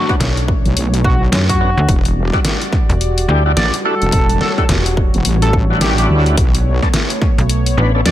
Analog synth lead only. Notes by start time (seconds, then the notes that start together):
1.05 F#4
1.49 F#4
3.57 D5
3.85 A4
4.41 A4
4.58 A4
5.42 A4
5.82 G4
5.98 G4
8.06 D5